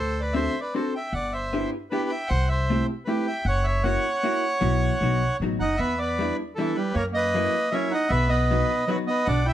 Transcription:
Already playing: upright bass D2, accordion A4 C5
0.20 accordion B4 D5
0.33 hollow-body jazz guitar C4 D4 F#4 A4, accordion C5 E5
0.61 accordion B4 D5
0.74 hollow-body jazz guitar C4 D4 F#4 A4, accordion A4 C5
0.95 accordion E5 G5
1.13 upright bass G1, accordion D5 F#5
1.33 accordion C5 E5
1.53 hollow-body jazz guitar B3 D4 E4 G4
1.91 hollow-body jazz guitar B3 D4 E4 G4, accordion G4 B4
2.10 accordion E5 G5
2.27 upright bass C2, accordion C5 F#5
2.49 accordion C5 E5
2.70 hollow-body jazz guitar A3 C4 E4 G4
3.05 hollow-body jazz guitar A3 C4 E4 G4, accordion G4 B4
3.26 accordion E5 G5
3.45 upright bass F#1, accordion C#5 F#5
3.64 accordion C#5 E5
3.84 hollow-body jazz guitar A#3 C#4 E4 F#4, accordion C#5 F#5
4.23 hollow-body jazz guitar A#3 C#4 E4 F#4
4.61 upright bass B1, hollow-body jazz guitar F#3 B3 E4 F#4
5.01 upright bass B1, hollow-body jazz guitar F#3 B3 D#4 F#4
5.40 upright bass A1, hollow-body jazz guitar F#3 B3 D#4 F#4
5.59 upright bass F#1, clarinet D#4, accordion D#5 F#5
5.77 upright bass E2, clarinet B3, accordion B4 E5
5.97 clarinet B3, accordion D5
6.01 accordion B4
6.19 hollow-body jazz guitar G3 B3 D4 E4
6.56 clarinet E3, hollow-body jazz guitar G3 B3 D4, accordion E4 A4
6.60 hollow-body jazz guitar E4
6.75 clarinet G3, accordion G4 B4
6.94 upright bass F#2, clarinet A#3, accordion A#4 C#5
7.12 clarinet A#3, accordion D#5
7.17 accordion B4
7.35 hollow-body jazz guitar F#3 A#3 C#4 E4
7.71 hollow-body jazz guitar F#3 A#3 C#4 E4, clarinet C#4, accordion C#5 E5
7.91 clarinet D#4, accordion D#5 F#5
8.09 upright bass B1, clarinet B3, accordion B4 E5
8.29 clarinet B3, accordion B4 D#5
8.51 hollow-body jazz guitar F#3 B3 D#4 F#4
8.87 clarinet F#3, hollow-body jazz guitar F#3 B3 D#4 F#4, accordion F#4 B4
9.07 clarinet B3, accordion B4 D#5
9.25 upright bass B1, clarinet D4, accordion D5 F#5
9.46 clarinet E4, accordion E5 G5

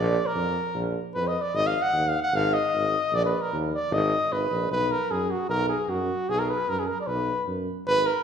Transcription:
Already playing: tuba A#1, cornet D5
0.26 cornet A#4
0.35 tuba F2
0.74 tuba A#1
1.15 tuba F2, cornet B4
1.28 cornet D#5
1.41 cornet D5
1.54 tuba G#1, cornet D#5
1.67 cornet F5
1.82 cornet F#5
1.93 tuba D#2
2.09 cornet F5
2.23 cornet F#5
2.33 tuba G#1, cornet F5
2.53 cornet D#5
2.73 tuba G#1
3.13 tuba A#1, cornet D5
3.26 cornet B4
3.41 cornet A#4
3.52 tuba D#2
3.74 cornet D5
3.91 tuba G#1, cornet D#5
4.32 tuba G#1, cornet B4
4.50 tuba A#1
4.71 tuba B1, cornet B4
4.91 cornet A#4
5.11 tuba F#2, cornet G#4
5.31 cornet F#4
5.49 tuba B1, cornet A#4
5.69 cornet G#4
5.88 tuba F#2, cornet F#4
6.29 tuba B1, cornet G#4
6.39 cornet A#4
6.50 cornet B4
6.68 tuba F#2, cornet A#4
6.79 cornet G#4
6.87 cornet A#4
7.00 cornet D5
7.06 tuba B1, cornet B4
7.47 tuba F#2
7.86 tuba G#1, cornet B4
8.06 cornet A#4

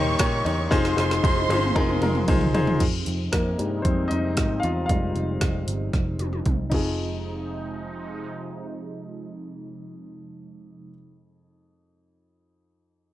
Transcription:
Already playing: picked electric bass D#2, grand piano A#2 D#4 G4 A#4 C5 C#5 D#5, analog synth pad C#3 G3 A#3 D#4, violin section C#5 C#6
0.19 picked electric bass A#2, grand piano D#4 G4 A#4 C#5, kick, snare, ride
0.45 picked electric bass E2, grand piano D#4 G4 A#4 C#5, ride
0.71 picked electric bass F1, grand piano C3 D#4 F4 G#4 C5, analog synth pad C3 F3 G#3, violin section C5 C6, kick, snare, ride
0.85 snare
0.96 picked electric bass F1, grand piano D#4 F4 G#4 C5, snare, ride
1.11 snare
1.23 picked electric bass F1, grand piano D#4 F4 G#4 C5, kick, high tom, ride
1.37 high tom
1.49 picked electric bass G1, grand piano D#4 F4 G#4 C5, high tom, ride
1.63 mid tom
1.75 picked electric bass F1, grand piano D#4 F4 G#4 A#4, kick, mid tom, ride
1.89 mid tom
2.02 picked electric bass F1, grand piano D#4 F4 G#4 A#4, mid tom, ride
2.15 mid tom
2.28 picked electric bass C2, grand piano D#4 F4 G#4 C5, kick, mid tom, ride
2.41 floor tom
2.54 picked electric bass E1, grand piano D#4 F4 G#4 C5, floor tom, ride
2.67 floor tom
2.80 picked electric bass F2, analog synth pad C3 F3 C4 D#4, kick, closed hi-hat, crash
3.06 picked electric bass F2, closed hi-hat
3.32 picked electric bass F2, grand piano A#3 A#4, kick, snare, closed hi-hat
3.58 picked electric bass G2, grand piano G3 G#3 D#4, closed hi-hat
3.82 picked electric bass F2, grand piano C4 C5, kick, closed hi-hat
4.08 picked electric bass F2, grand piano D#5, closed hi-hat
4.12 grand piano D#4
4.37 picked electric bass G#2, kick, snare, closed hi-hat
4.60 grand piano F5, closed hi-hat
4.64 picked electric bass E2, grand piano F4
4.86 picked electric bass F1, grand piano G3 G#3 F5, kick, closed hi-hat
4.90 grand piano D#4 F4
5.15 picked electric bass F1, closed hi-hat
5.41 picked electric bass F1, kick, snare, closed hi-hat
5.67 picked electric bass G1, closed hi-hat
5.93 picked electric bass F1, kick, snare, closed hi-hat
6.19 picked electric bass F1, closed hi-hat, high tom
6.33 high tom
6.46 picked electric bass C2, kick, closed hi-hat, mid tom
6.70 picked electric bass F1, grand piano F2 D#4 F4, analog synth pad C3 F3 G#3 D#4, kick, crash
6.74 grand piano G#4

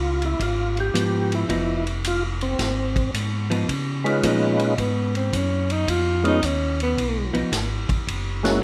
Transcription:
Already playing: tonewheel organ C#2 F4
0.22 tonewheel organ E4, ride
0.40 tonewheel organ G#1 F4, kick, ride
0.77 tonewheel organ G4, ride
0.94 tonewheel organ G#2, hollow-body jazz guitar F3 B3, hi-hat pedal, ride
1.32 tonewheel organ E4, ride
1.49 tonewheel organ F1, hollow-body jazz guitar F3 B3 D#4, kick, ride
1.87 ride
2.04 tonewheel organ F4, hi-hat pedal, ride
2.41 tonewheel organ C4, ride
2.59 tonewheel organ G#1, kick, snare, ride
2.96 kick, ride
3.14 tonewheel organ G#2, hi-hat pedal, ride
3.50 hollow-body jazz guitar F3 B3 D#4, ride
3.69 tonewheel organ C#3, kick, ride
4.04 tonewheel organ G#3 C#4 D#4 F4 B4, ride
4.23 tonewheel organ A#2, hollow-body jazz guitar F3 B3 D#4, kick, hi-hat pedal, ride
4.59 ride
4.78 tonewheel organ G#2, tenor saxophone B3, kick, ride
5.15 tenor saxophone C4, ride
5.33 tonewheel organ F#2, tenor saxophone C#4, kick, hi-hat pedal, ride
5.70 tenor saxophone D#4, ride
5.88 tonewheel organ F2, tenor saxophone F4, kick, ride
6.23 tonewheel organ G#3 B3 C#4 D#4 F4, tenor saxophone D#4, ride
6.42 tonewheel organ D#2, tenor saxophone C#4, kick, hi-hat pedal, ride
6.80 tenor saxophone B3, ride
6.97 tonewheel organ B1, kick, ride
7.33 tonewheel organ B1, hollow-body jazz guitar F3 B3 D#4, ride
7.52 tonewheel organ G#1, kick, snare, hi-hat pedal, ride
7.89 tonewheel organ G#1, kick, ride
8.07 tonewheel organ F#1, kick, ride
8.43 tonewheel organ G#3 A#3 C#4 E4 F#4, tenor saxophone F#4, snare, ride

